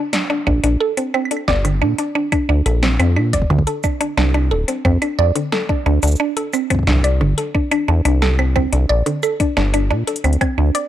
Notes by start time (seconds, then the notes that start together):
0.13 D4, snare, closed hi-hat
0.30 D4
0.47 A#1 D4, kick
0.64 A#1 D4, closed hi-hat
0.80 A4
0.97 C4, closed hi-hat
1.14 C4, claves
1.25 claves
1.31 D4, closed hi-hat
1.37 claves
1.48 G1 D5, kick, snare
1.65 D3, closed hi-hat, claves
1.82 A#2 D4
1.98 D4, closed hi-hat
2.15 D4
2.32 D4, kick, closed hi-hat, claves
2.49 D2 D4
2.66 A#1 A4, closed hi-hat, claves
2.83 C4, snare
2.99 F2 C4, closed hi-hat, claves
3.16 A#2 D4, claves
3.33 F1 D5, kick, closed hi-hat
3.42 kick
3.50 D2 D3, kick
3.59 kick
3.67 A4, closed hi-hat
3.84 D4, kick, cabasa, claves
4.01 D4, closed hi-hat
4.17 C2 D4, snare
4.34 D4, claves
4.51 D1 A4
4.68 C4, closed hi-hat
4.85 F2 C4, kick, claves
5.02 D4, closed hi-hat, claves
5.19 F2 D5
5.35 D3, closed hi-hat
5.52 A4, snare
5.69 D4, kick
5.86 D2 D4
6.03 D2 D4, closed hi-hat, cabasa
6.07 cabasa
6.11 cabasa
6.16 cabasa
6.20 D4
6.37 A4, closed hi-hat
6.53 C4, cabasa, claves
6.70 C4, kick, closed hi-hat
6.75 kick
6.79 kick
6.83 kick
6.87 C2 D4, kick, snare
6.91 kick
6.96 kick
7.00 kick
7.04 D5, closed hi-hat, claves
7.21 G1 D3
7.38 A4, closed hi-hat
7.55 D4, kick
7.71 D4, closed hi-hat, claves
7.88 E2 D4
8.05 C2 D4, closed hi-hat, claves
8.22 A4, snare
8.39 C4, claves
8.56 C4, kick, claves
8.72 C2 D4, closed hi-hat
8.89 A#1 D5
9.06 D3, closed hi-hat
9.23 A4, cabasa, claves
9.40 D4, kick, closed hi-hat
9.57 G1 D4, snare
9.74 D4, closed hi-hat, claves
9.90 A#2 D4
10.07 A4, closed hi-hat
10.16 closed hi-hat
10.24 D2 C4, closed hi-hat, claves
10.33 closed hi-hat
10.41 C4, kick, closed hi-hat, claves
10.58 D2 D4
10.75 D5, closed hi-hat